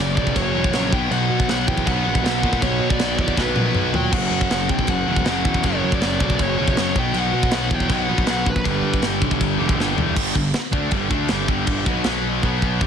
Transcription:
Already playing: F#2 C#3 F#3 D5
0.00 F#1 F#2 C#3 F#3
0.16 B1 F#2 C#3 F#3 D5, kick
0.27 kick
0.36 F#1 F#2 C#3 F#3 C#5, kick, china
0.54 E1 F#2 C#3 F#3
0.64 kick
0.73 A#1 F#2 C#3 F#3, snare, china
0.92 B1 B2 F#3 B3 G5, kick
1.11 B1 B2 F#3 B3 F#5, china
1.30 B2
1.40 kick
1.48 B1 B2 F#3 B3 F#5, snare, china
1.67 E2 B2 F#3 B3 G5, kick
1.77 kick
1.86 B1 B2 F#3 B3 F#5, kick, china
2.04 A#1 B2 F#3 B3
2.15 kick
2.23 B1 B2 F#3 B3 F#5, snare, china
2.43 A#2 B2 F#3 B3, kick
2.53 kick
2.61 B1 B2 F#3 B3 C#5, kick, china
2.80 B2
2.90 D5, kick
2.98 B1 B2 F#3 B3, snare, china
3.17 E2 B2 F#3 B3, kick
3.22 D5
3.28 kick
3.35 B1 B2 F#3 B3 B4, kick, snare
3.55 A#1 B2 F#3 B3, mid tom
3.74 B1 B2 F#3 B3, mid tom
3.93 A#2 B2 F#3 B3 G5, floor tom
4.12 F#1 F#2 C#3 F#3 F#5, kick, china, crash
4.31 F#2
4.41 kick
4.49 F#1 F#2 C#3 F#3 F#5, snare, china
4.69 B1 F#2 C#3 F#3 G5, kick
4.79 kick
4.87 F#1 F#2 C#3 F#3 F#5, kick, china
5.06 E1 F#2 C#3 F#3
5.16 kick
5.25 F#1 F#2 C#3 F#3 F#5, snare, china
5.45 E2 F#2 C#3 F#3, kick
5.54 kick
5.63 F#1 F#2 C#3 F#3 C#5, kick, china
5.84 F#2
5.92 D5, kick
6.01 F#1 F#2 C#3 F#3, snare, china
6.20 B1 F#2 C#3 F#3 D5, kick
6.30 kick
6.38 F#1 F#2 C#3 F#3, kick, china
6.42 C#5
6.59 E1 F#2 C#3 F#3
6.68 kick
6.76 F#1 F#2 C#3 F#3, snare, china
6.95 B1 B2 F#3 B3 G5, kick
7.14 B1 B2 F#3 B3, china
7.20 F#5
7.33 B2
7.43 kick
7.51 B1 B2 F#3 B3 F#5, snare, china
7.71 E2 B2 F#3 B3 G5, kick
7.80 kick
7.89 B1 B2 F#3 B3, kick, china
7.93 F#5
8.08 A#1 B2 F#3 B3
8.18 kick
8.26 B1 B2 F#3 B3, snare, china
8.30 F#5
8.45 A#1 B2 F#3 B3, kick
8.50 B4
8.56 kick
8.64 G1 G2 D3 G3, kick, china
8.82 G2
8.94 kick
9.02 G1 G2 D3 G3, snare, china
9.21 B1 G2 D3 G3, kick
9.31 kick
9.38 G1 G2 D3 G3, kick, china
9.59 E1 G2 D3 G3
9.69 kick
9.77 G1 G2 D3 G3, snare
9.83 G3
9.96 E2 G2 D3 G3, floor tom
10.15 G1 G2 D3 G3, kick, crash
10.33 G1 G2 D3, kick
10.37 D3
10.54 snare, crash
10.71 D2 D3 A3 D4, kick
10.91 G1 G2 D3 G3, kick, crash
11.09 D2 D3 A3 D4, kick
11.28 G1 G2 D3 G3, snare, crash
11.48 G1 G2 D3 G3, kick
11.67 G1 G2 D3 G3, kick, crash
11.86 B1 B2 F#3 B3, kick
12.04 B1 B2 F#3 B3, snare, crash
12.43 B1 B2 F#3 B3, kick
12.62 kick
12.81 G1 G2 D3 G3, kick

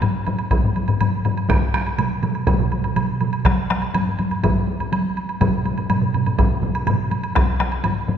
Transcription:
0.02 taiko low-mid, taiko high, high woodblock
0.15 taiko high
0.27 taiko low-mid, taiko high, high woodblock
0.39 taiko high, high woodblock
0.51 taiko, taiko high, high woodblock
0.64 taiko low-mid, taiko high
0.76 taiko high, high woodblock
0.88 taiko low-mid, high woodblock
1.01 taiko low-mid, taiko high, high woodblock
1.14 taiko high
1.25 taiko low-mid, taiko high, high woodblock
1.37 taiko high, high woodblock
1.49 taiko rim, taiko, taiko high, high woodblock
1.62 taiko high
1.74 taiko rim, taiko high, high woodblock
1.87 taiko high, high woodblock
1.98 taiko mid, taiko high, high woodblock
2.11 taiko high
2.23 taiko mid, taiko high, high woodblock
2.35 high woodblock
2.47 taiko, taiko high, high woodblock
2.59 taiko mid, taiko high
2.72 taiko high, high woodblock
2.84 taiko mid, taiko high, high woodblock
2.96 taiko mid, taiko high, high woodblock
3.09 taiko high
3.21 taiko mid, taiko high, high woodblock
3.33 taiko high, high woodblock
3.45 taiko rim, taiko, taiko high, high woodblock
3.58 taiko high
3.70 taiko rim, taiko high
3.82 taiko high, high woodblock
3.94 taiko low-mid, taiko high, high woodblock
4.07 taiko low-mid, taiko high
4.19 taiko low-mid, taiko high, high woodblock
4.31 taiko low-mid, taiko high, high woodblock
4.43 taiko, taiko low-mid, taiko high, high woodblock
4.55 taiko high
4.67 taiko high
4.80 taiko low-mid, taiko high, high woodblock
4.92 taiko high, high woodblock
5.05 taiko high
5.17 high woodblock
5.29 taiko high, high woodblock
5.41 taiko, taiko low-mid, taiko mid, taiko high, high woodblock
5.54 taiko high
5.66 taiko high, high woodblock
5.77 taiko low-mid, taiko mid, taiko high, high woodblock
5.90 taiko low-mid, taiko mid, taiko high, high woodblock
6.02 taiko low-mid, taiko mid, taiko high
6.14 taiko low-mid, taiko mid, taiko high, high woodblock
6.26 taiko low-mid, taiko mid, taiko high, high woodblock
6.38 taiko, taiko low-mid, taiko mid, taiko high, high woodblock
6.50 taiko low-mid, taiko mid, taiko high
6.62 taiko low-mid, taiko mid, taiko high
6.75 taiko high, high woodblock
6.87 taiko low-mid, taiko mid, taiko high, high woodblock
6.99 taiko high
7.11 taiko high, high woodblock
7.24 taiko high, high woodblock
7.36 taiko rim, taiko, taiko high, high woodblock
7.60 taiko rim, taiko high, high woodblock
7.72 taiko high, high woodblock
7.84 taiko low-mid, taiko high, high woodblock
7.96 taiko high
8.09 taiko low-mid, taiko high

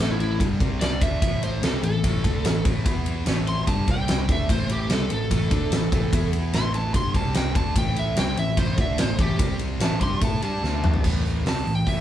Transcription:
0.00 A1 A2 E3 A3 A4, snare
0.11 E4
0.20 E4, ride
0.39 G1 G2 D3 G3, kick, ride
0.60 C2 C3 G3 C4, kick, ride
0.81 D5, snare, ride
1.01 D2 D3 A3 D4 E5, kick, ride
1.21 A1 A2 E3 A3, kick, ride
1.43 C5, ride
1.63 C2 C3 G3 C4 A4, snare, ride
1.83 A1 A2 E3 A4, ride
2.04 A1 A2 E3 A3, kick, ride
2.24 D2 D3 A3 D4, kick, ride
2.45 A1 A2 E3, snare, ride
2.65 A1 A2 E3 A3, kick, ride
2.85 E2 E3 B3 E4, kick, ride
3.06 ride
3.26 A1 A2 E3 A3, snare, ride
3.47 C6, ride
3.67 G1 G2 D3 G3 A5, kick, ride
3.88 C2 C3 G3 C4 G5, kick, ride
4.08 snare, ride
4.29 D2 D3 A3 D4 E5, kick, ride
4.49 A1 A2 E3 A3 C5, kick, ride
4.69 G4, ride
4.90 C2 C3 G3 C4 A4, snare, ride
5.10 A1 A2 E3 A4, ride
5.31 A1 A2 E3 A3, kick, ride
5.51 D2 D3 A3 D4, kick, ride
5.71 A1 A2 E3, snare, ride
5.92 A1 A2 E3 A3, kick, ride
6.13 E2 E3 B3 E4, kick, ride
6.33 ride
6.53 A1 A2 E3 A3 C6, snare, ride
6.74 A5, ride
6.94 G1 G2 D3 G3 C6, kick, ride
7.14 C2 C3 G3 C4 A5, kick, ride
7.34 G5, snare, ride
7.55 D2 D3 A3 D4 A5, kick, ride
7.76 A1 A2 E3 A3 G5, kick, ride
7.96 E5, ride
8.16 C2 C3 G3 C4 G5, snare, ride
8.37 A1 A2 E3 E5, ride
8.57 A1 A2 E3 A3 C5, kick, ride
8.78 D2 D3 A3 D4 E5, kick, ride
8.98 A1 A2 E3 C5, snare, ride
9.19 A1 A2 E3 A3 G4, kick, ride
9.39 C2 C3 G3 C4, kick, ride
9.59 ride
9.80 A1 A2 E3 A3 A5, snare, ride
10.01 G2 G3 D4 G4 C6, kick, ride
10.21 A2 A3 E4 A4 A5, kick, ride
10.42 G2 G3 D4 G4 A5, ride
10.63 D2 D3 A3 D4, snare
10.84 mid tom
10.94 floor tom
11.04 A1 A2 E3 A3, kick, crash
11.25 open hi-hat
11.45 C2 C3 G3 C4 A5, snare, open hi-hat
11.66 A1 A2 E3, open hi-hat
11.75 G5
11.86 A1 A2 E3 A3 E5, kick, open hi-hat

